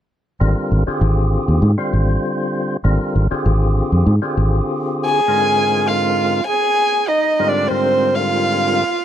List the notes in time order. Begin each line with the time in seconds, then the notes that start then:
0.40 G#1 D3 G3 C4 F4 A#4
0.71 G#1
0.87 D3 C4 F4 G4 G#4, muted fingered electric bass stroke
1.01 G#1
1.48 D#2
1.62 G#2
1.78 D3 G3 C4 F4 C5
1.93 G#1
2.84 G#1 D3 G3 C4 F4 A#4
3.15 G#1
3.31 D3 C4 F4 G4 G#4, muted fingered electric bass stroke
3.46 G#1
3.92 F2
4.06 G#2
4.22 D3 C4 F4 G4 G#4
4.37 G#1
5.05 G#4 G#5
5.28 G#2 D3 G#3 C4 F4 A#4
5.87 F4 F5
6.46 G#4 G#5
7.08 D#4 D#5
7.39 G#2 D3 G3 C4 F4 A#4
7.48 D4 D5
7.67 G#2 D3 G3 C4 F4 A#4 C5
8.14 F4 F5